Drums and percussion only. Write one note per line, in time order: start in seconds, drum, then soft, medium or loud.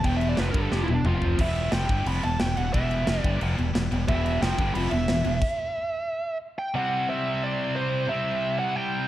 0.04 kick loud
0.04 crash medium
0.21 crash medium
0.37 snare loud
0.37 crash medium
0.54 kick loud
0.54 crash medium
0.72 snare medium
0.88 high tom medium
1.05 mid tom medium
1.22 floor tom medium
1.39 kick loud
1.39 crash loud
1.39 crash medium
1.56 crash medium
1.72 snare loud
1.72 crash medium
1.89 kick loud
1.89 crash medium
2.06 crash loud
2.23 crash medium
2.40 snare loud
2.40 crash medium
2.57 crash medium
2.74 kick loud
2.74 crash medium
2.91 crash medium
3.07 snare loud
3.07 crash medium
3.24 kick loud
3.24 crash medium
3.41 crash medium
3.58 crash medium
3.75 snare loud
3.75 crash medium
3.92 crash medium
4.08 kick loud
4.08 crash medium
4.26 crash medium
4.43 snare loud
4.43 crash loud
4.59 kick loud
4.59 crash medium
4.75 crash loud
4.91 crash medium
5.08 snare loud
5.08 crash medium
5.25 crash medium
5.42 kick loud
5.42 crash loud